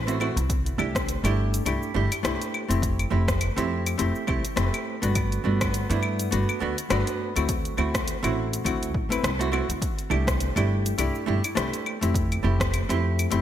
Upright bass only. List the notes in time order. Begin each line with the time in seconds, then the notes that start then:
Already playing: A1
0.36 C2
0.78 C2
1.24 G1
1.65 C2
1.95 G1
2.24 C2
2.70 F1
3.11 F1
3.57 F2
3.99 F1
4.28 C2
4.57 F1
5.03 G1
5.45 G1
5.90 G2
6.32 G1
6.62 D2
6.91 G1
7.36 D2
7.78 D2
8.24 A1
8.65 D2
8.94 A1
9.23 C2
9.69 D2
10.11 C2
10.56 G1
10.99 C2
11.28 G1
11.57 C2
12.02 F1
12.44 F1
12.90 F2
13.32 F1